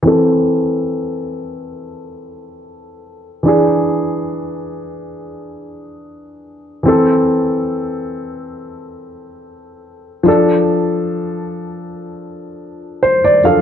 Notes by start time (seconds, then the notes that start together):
0.03 E3 C4
0.07 A4
3.43 E3 D4
3.48 G#4
6.83 E3 C4
6.88 A4
10.23 F3 D4
10.28 A4
13.03 C5
13.24 D5
13.44 F3 D4 A4 F5